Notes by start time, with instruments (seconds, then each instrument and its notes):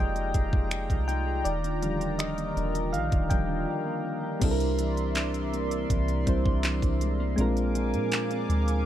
Already playing: 808-style bass F1, clean electric guitar F3 A#3 D#4 G#4, analog synth pad G#3 F4 G5 A#5, synth keys G#3 A#3 D#4 G4 D5 D#5 G5
0.16 clean electric guitar D#4, closed hi-hat
0.34 808-style bass F1, clean electric guitar G#4, kick, closed hi-hat
0.53 808-style bass F1, clean electric guitar D#4, kick
0.71 clean electric guitar G#4, finger snap, closed hi-hat
0.90 808-style bass C2, clean electric guitar A#3, kick, closed hi-hat
1.08 clean electric guitar D#4, synth keys G5, closed hi-hat
1.27 clean electric guitar G#4
1.45 808-style bass D#1, clean electric guitar D#3, analog synth pad A#4, synth keys D5, closed hi-hat
1.64 clean electric guitar D4, closed hi-hat
1.82 synth keys D3 F3 G3, clean electric guitar G4, closed hi-hat
2.01 clean electric guitar D4, closed hi-hat
2.19 clean electric guitar G4, synth keys D#5, finger snap, closed hi-hat
2.38 clean electric guitar A#3, closed hi-hat
2.57 808-style bass D#1, clean electric guitar D4, closed hi-hat
2.75 clean electric guitar G4, closed hi-hat
2.93 808-style bass A#1, clean electric guitar D#3, synth keys F5, closed hi-hat
3.12 808-style bass D#1, clean electric guitar D4, kick, closed hi-hat
3.30 808-style bass D#1, synth keys F3 G3 D4 G5, clean electric guitar G4, kick, closed hi-hat
3.49 clean electric guitar D4
3.68 clean electric guitar G4
3.86 clean electric guitar A#3
4.05 clean electric guitar D4
4.23 clean electric guitar G4
4.40 808-style bass C2, clean electric guitar C3, synth keys G3 C4 D4 E4, analog synth pad A#4 D5 E5 C6, kick, closed hi-hat, crash
4.45 synth keys A4
4.51 synth keys A#4
4.60 closed hi-hat
4.79 clean electric guitar E3, closed hi-hat
4.97 closed hi-hat
5.15 clean electric guitar D4, clap, closed hi-hat
5.34 closed hi-hat
5.53 clean electric guitar A#3, closed hi-hat
5.71 closed hi-hat
5.90 808-style bass C2, clean electric guitar E3, kick, closed hi-hat
6.08 closed hi-hat
6.26 808-style bass C2, synth keys G3 C4 D4 E4 C5, clean electric guitar D4, kick, closed hi-hat
6.46 kick
6.64 clean electric guitar E3, clap, closed hi-hat
6.82 808-style bass C2, kick, closed hi-hat
7.01 clean electric guitar G#3, closed hi-hat
7.20 clean electric guitar A#3
7.36 808-style bass A#1, clean electric guitar A#2, synth keys G#3 C4 D4, analog synth pad F5 G#5 D6, closed hi-hat
7.40 synth keys F4 A#4
7.57 closed hi-hat
7.75 clean electric guitar F3, closed hi-hat
7.94 808-style bass A#2, closed hi-hat
8.12 clean electric guitar C4, clap, closed hi-hat
8.31 clean electric guitar D4, closed hi-hat
8.49 808-style bass D2, clean electric guitar G#3, closed hi-hat
8.68 closed hi-hat